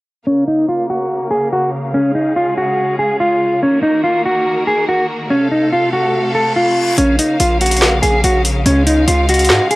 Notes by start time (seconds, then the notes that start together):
0.26 C#3 A#3 C#4 A#4 F5
0.47 D#4
0.68 F4
0.90 F#4
1.31 G#4
1.53 F#4
1.94 G#3 C#4 G#4
2.15 D#4
2.36 F4
2.58 F#4
2.99 G#4
3.20 F4
3.62 D#3 A#3 C#4 F#4 A#4
3.83 D#4
4.04 F4
4.25 F#4
4.67 G#4
4.89 F#4
5.30 C3 A3 C#4 A4 F5
5.51 D#4
5.73 F4
5.93 F#4
6.14 reverse cymbal
6.35 A4
6.56 F4
6.98 A#1 C#3 A#3 C#4 F5, closed hi-hat
7.19 D#4, closed hi-hat
7.40 A#1 F4, closed hi-hat
7.61 F#4, closed hi-hat
7.66 closed hi-hat
7.71 closed hi-hat
7.77 closed hi-hat
7.82 snare, clap, closed hi-hat
8.02 A#1 G#4, closed hi-hat
8.24 A#1 F#4, closed hi-hat
8.45 closed hi-hat
8.66 C#2 G#3 C#4 F5, closed hi-hat
8.86 D#4, closed hi-hat
9.08 C#2 F4, closed hi-hat
9.29 F#4, closed hi-hat
9.34 closed hi-hat
9.39 closed hi-hat
9.44 closed hi-hat
9.50 G#2, snare, clap, closed hi-hat
9.71 G#4, closed hi-hat